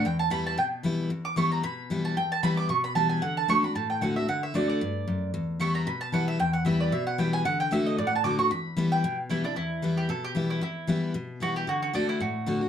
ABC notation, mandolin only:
X:1
M:4/4
L:1/8
Q:"Swing" 1/4=227
K:Edor
V:1 name="Mandolin"
g a b a g z3 | z d' c' ^a b3 =a | g a b d' c' b a ^g | f a c' b a g f e |
f e d d4- d | z2 c' ^a b =a f e | g f e d e f g ^g | f g e ^d (3=d f a d' c' |
b3 g2 z E D | E3 G A G2 E | E4 z2 F G | F F D E F4 |]